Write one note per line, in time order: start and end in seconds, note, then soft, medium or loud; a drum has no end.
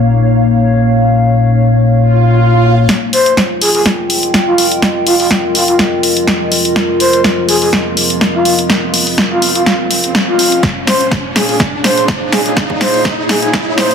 0.00 2.85 A#2 medium
0.00 2.85 A#3 medium
0.00 4.07 A#3 medium
0.00 4.27 D#4 medium
0.00 2.85 C#5 medium
0.00 2.89 C#5 medium
0.00 2.85 F5 medium
0.00 2.89 F5 medium
1.92 swell medium
2.89 10.59 F3 medium
2.89 10.59 C4 medium
2.89 12.40 F4 medium
2.89 10.59 G#4 medium
2.89 10.59 D#5 medium
2.89 snare soft
2.89 closed hi-hat medium
2.89 riser medium
3.07 11.75 A#4 medium
3.07 11.86 D#5 medium
3.13 3.33 C5 medium
3.13 open hi-hat loud
3.26 closed hi-hat medium
3.37 snare soft
3.37 closed hi-hat medium
3.46 7.47 G5 medium
3.61 3.70 G#4 medium
3.61 open hi-hat loud
3.75 3.82 G#4 medium
3.75 open hi-hat medium
3.86 snare medium
3.86 closed hi-hat medium
4.10 open hi-hat loud
4.23 closed hi-hat medium
4.34 snare soft
4.34 closed hi-hat medium
4.47 4.67 F4 medium
4.58 open hi-hat loud
4.72 closed hi-hat medium
4.82 snare soft
4.82 closed hi-hat medium
5.06 5.15 F4 medium
5.06 open hi-hat loud
5.20 5.27 F4 medium
5.20 open hi-hat medium
5.31 snare medium
5.31 closed hi-hat medium
5.55 5.63 F4 medium
5.55 open hi-hat loud
5.68 5.75 F4 medium
5.68 closed hi-hat medium
5.79 snare medium
5.79 closed hi-hat medium
6.03 open hi-hat loud
6.17 closed hi-hat medium
6.28 snare medium
6.28 closed hi-hat medium
6.52 open hi-hat loud
6.65 closed hi-hat medium
6.76 snare medium
6.76 closed hi-hat soft
7.00 7.20 C5 medium
7.00 open hi-hat loud
7.13 closed hi-hat medium
7.24 snare medium
7.24 closed hi-hat soft
7.33 13.95 F5 medium
7.48 7.57 G#4 medium
7.48 open hi-hat loud
7.62 7.69 G#4 medium
7.62 open hi-hat medium
7.73 snare medium
7.73 closed hi-hat soft
7.97 open hi-hat loud
8.10 closed hi-hat medium
8.21 snare medium
8.21 closed hi-hat medium
8.34 8.54 F4 medium
8.45 open hi-hat loud
8.59 closed hi-hat medium
8.70 snare medium
8.70 closed hi-hat soft
8.94 open hi-hat loud
9.07 open hi-hat medium
9.18 snare medium
9.18 closed hi-hat medium
9.31 9.50 F4 medium
9.42 open hi-hat loud
9.55 9.62 F4 medium
9.55 closed hi-hat medium
9.66 9.75 F4 medium
9.66 snare medium
9.66 closed hi-hat soft
9.91 open hi-hat loud
10.04 closed hi-hat medium
10.15 snare medium
10.15 closed hi-hat soft
10.28 10.63 F4 medium
10.39 open hi-hat loud
10.52 closed hi-hat medium
10.63 13.95 A#2 medium
10.63 13.95 A#3 medium
10.63 13.95 F4 medium
10.63 13.95 C#5 medium
10.63 kick loud
10.63 snare medium
10.63 closed hi-hat medium
10.85 13.95 D#4 medium
10.85 11.07 C5 medium
10.85 snare medium
10.85 open hi-hat loud
11.01 closed hi-hat medium
11.10 13.95 G#4 medium
11.10 kick loud
11.10 snare medium
11.10 closed hi-hat medium
11.32 11.44 G#4 medium
11.32 13.95 C#5 medium
11.36 snare medium
11.36 open hi-hat loud
11.49 11.56 G#4 medium
11.49 open hi-hat medium
11.60 kick loud
11.60 snare medium
11.84 12.04 C5 medium
11.84 snare medium
11.84 open hi-hat loud
11.97 closed hi-hat medium
12.08 kick loud
12.08 snare medium
12.08 closed hi-hat soft
12.32 12.41 G#4 medium
12.32 snare medium
12.32 open hi-hat loud
12.46 12.53 G#4 medium
12.46 closed hi-hat medium
12.57 kick loud
12.57 snare medium
12.57 closed hi-hat medium
12.70 kick medium
12.81 13.01 C5 medium
12.81 snare medium
12.81 open hi-hat loud
12.94 open hi-hat medium
13.05 kick loud
13.05 snare medium
13.29 13.38 G#4 medium
13.29 snare medium
13.29 open hi-hat loud
13.42 13.49 G#4 medium
13.42 closed hi-hat medium
13.53 kick loud
13.53 snare medium
13.53 closed hi-hat medium
13.77 13.95 C5 medium
13.77 snare medium
13.77 open hi-hat loud
13.91 closed hi-hat medium